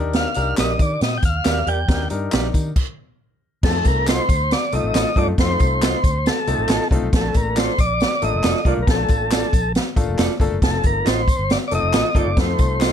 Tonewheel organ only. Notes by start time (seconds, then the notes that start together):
0.16 F5
0.60 D#5
0.82 D5
1.03 D#5
1.17 G5
1.25 F5
1.68 G5
3.64 A4
3.88 A#4
4.09 C5
4.53 D5
4.75 D#5
5.18 D5
5.40 C5
6.27 A4
7.16 A4
7.37 A#4
7.59 C5
7.80 D5
8.24 D#5
8.68 D5
8.82 A#4
8.90 A4
10.64 A4
10.86 A#4
11.08 C5
11.52 D5
11.68 D5
11.75 D#5
12.19 D5
12.41 C5